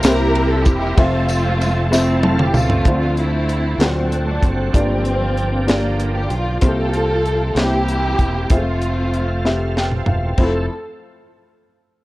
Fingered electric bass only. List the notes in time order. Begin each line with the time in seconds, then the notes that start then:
0.03 C2
0.66 E1
0.97 F1
2.54 C#2
2.85 D2
3.78 D2
4.42 F#1
4.74 G1
6.30 B1
6.62 C2
7.55 C2
8.18 E1
8.50 F1
10.06 E1
10.38 F1